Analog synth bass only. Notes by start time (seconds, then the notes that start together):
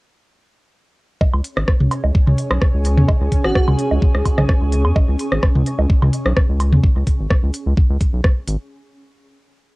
1.33 C#2
1.57 G#1
1.80 C#2
2.04 C#2
2.27 C#2
2.51 B1
2.74 C#2
2.97 E2
3.21 C#2
3.44 G#1
3.68 C#2
3.91 C#2
4.15 C#2
4.38 B1
4.62 C#2
4.85 E2
5.08 C#2
5.32 G#1
5.55 C#2
5.79 C#2
6.02 C#2
6.26 B1
6.49 C#2
6.72 E2
6.96 C#2
7.19 G#1
7.43 C#2
7.66 C#2
7.90 C#2
8.13 B1
8.48 G#1